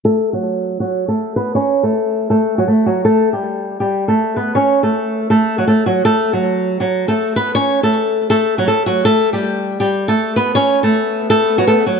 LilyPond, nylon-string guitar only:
\new Staff \with { instrumentName = "Nylon-string guitar" } { \time 4/4 \key fis \phrygian \tempo 4 = 160 <a a'>8. <fis fis'>4~ <fis fis'>16 <fis fis'>8. <a a'>8. <b b'>8 | <cis' cis''>8. <a a'>4~ <a a'>16 <a a'>8. <fis fis'>16 <a a'>8 <fis fis'>8 | <a a'>8. <g g'>4~ <g g'>16 <g g'>8. <a a'>8. <b b'>8 | <cis' cis''>8. <a a'>4~ <a a'>16 <a a'>8. <fis fis'>16 <a a'>8 <fis fis'>8 |
<a a'>8. <fis fis'>4~ <fis fis'>16 <fis fis'>8. <a a'>8. <b b'>8 | <cis' cis''>8. <a a'>4~ <a a'>16 <a a'>8. <fis fis'>16 <a a'>8 <fis fis'>8 | <a a'>8. <g g'>4~ <g g'>16 <g g'>8. <a a'>8. <b b'>8 | <cis' cis''>8. <a a'>4~ <a a'>16 <a a'>8. <fis fis'>16 <a a'>8 <fis fis'>8 | }